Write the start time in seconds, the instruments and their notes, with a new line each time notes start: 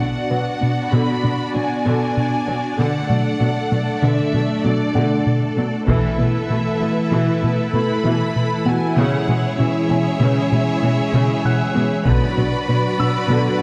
Already playing: french horn section B3 D4, analog synth pad B3 D4 F#4 D5, viola section D4, violin section F#4 D5 F#5
0.00 analog synth bass B2, viola section B3, synth arpeggio sound D4
0.30 cello section B2, analog synth bass B2, viola section F#3, synth arpeggio sound B4
0.61 cello section B2, analog synth bass B2, viola section B3, synth arpeggio sound D4
0.92 cello section B2, analog synth bass B2, viola section D3, synth arpeggio sound B3, violin section B5, grand piano B5
1.23 cello section B2, analog synth bass B2, viola section B3, synth arpeggio sound D4
1.54 cello section B2, analog synth bass B2, viola section F#3, synth arpeggio sound D4, violin section G#5
1.85 cello section B2, analog synth bass B2, viola section D3, synth arpeggio sound B3
2.17 analog synth bass B2
2.47 cello section B2, viola section F#3, analog synth bass B3, synth arpeggio sound F#4
2.78 cello section B2, analog synth bass B2, viola section D3, synth arpeggio sound D3, french horn section A3, analog synth pad A3 A4, violin section A4 F#5
3.09 analog synth bass B2, cello section B2, synth arpeggio sound F#3, viola section A3
3.40 analog synth bass B2, cello section B2, viola section F#3, synth arpeggio sound D4
3.71 cello section B2, analog synth bass B2, synth arpeggio sound F#3, viola section A3
4.02 cello section B2, analog synth bass B2, synth arpeggio sound D3, viola section D3, violin section E5
4.33 cello section B2, analog synth bass B2, synth arpeggio sound F#3, viola section A3
4.64 cello section B2, analog synth bass B2, viola section F#3, synth arpeggio sound F#3, violin section D5
4.95 cello section B2, analog synth bass B2, synth arpeggio sound D3, viola section D3, grand piano F#5
5.26 analog synth bass B2
5.56 cello section B2, viola section F#3, synth arpeggio sound A3, analog synth bass B3
5.87 cello section B2, analog synth bass B2, synth arpeggio sound E3, viola section E3 E4, analog synth pad E3 E4 B4, french horn section E4, violin section B4 E5, taiko
6.18 cello section B2, analog synth bass B2, synth arpeggio sound A3, viola section B3
6.50 cello section B2, analog synth bass B2, viola section A3, synth arpeggio sound E4
6.80 cello section B2, analog synth bass B2, synth arpeggio sound A3, viola section B3
7.11 analog synth bass B2, cello section B2, synth arpeggio sound E3, viola section E3
7.42 cello section B2, analog synth bass B2, synth arpeggio sound A3, viola section B3
7.73 analog synth bass B2, cello section B2, synth arpeggio sound A3, viola section A3, violin section B5
8.04 cello section B2, analog synth bass B2, synth arpeggio sound E3, viola section E3, grand piano E5
8.36 analog synth bass B2
8.66 cello section B2, viola section A3, synth arpeggio sound B3, analog synth bass B3, grand piano F#4 F#5, violin section G#5
8.96 analog synth bass B2, cello section B2, synth arpeggio sound C#3, viola section C#3, french horn section G#3 C#4, violin section G#4 C#5 F#5, analog synth pad G#4 C#5
9.28 cello section B2, analog synth bass B2, synth arpeggio sound E3, viola section G#3
9.58 analog synth bass B2, cello section B2, viola section E3, synth arpeggio sound C#4, violin section E5
9.89 analog synth bass B2, cello section B2, synth arpeggio sound E3, viola section G#3, grand piano G#5
10.20 analog synth bass B2, cello section B2, synth arpeggio sound C#3, viola section C#3
10.51 cello section B2, analog synth bass B2, synth arpeggio sound E3, viola section G#3
10.82 analog synth bass B2, cello section B2, synth arpeggio sound E3, viola section E3
11.13 cello section B2, analog synth bass B2, synth arpeggio sound C#3, viola section C#3
11.45 analog synth bass B2, grand piano F#5 F#6
11.75 cello section B2, viola section E3, synth arpeggio sound G#3, analog synth bass B3
12.05 cello section B2, analog synth bass B2, viola section D3 F#4, french horn section F#3 D4, analog synth pad F#3 D4 F#4 B4, synth arpeggio sound B3, violin section B4 D5 B5, taiko
12.37 cello section B2, analog synth bass B2, viola section F#3, synth arpeggio sound D4
12.67 cello section B2, analog synth bass B2, viola section D3, synth arpeggio sound B4
12.99 cello section B2, analog synth bass B2, viola section F#3, synth arpeggio sound D4, grand piano E6
13.29 cello section B2, analog synth bass B2, viola section D3, synth arpeggio sound B3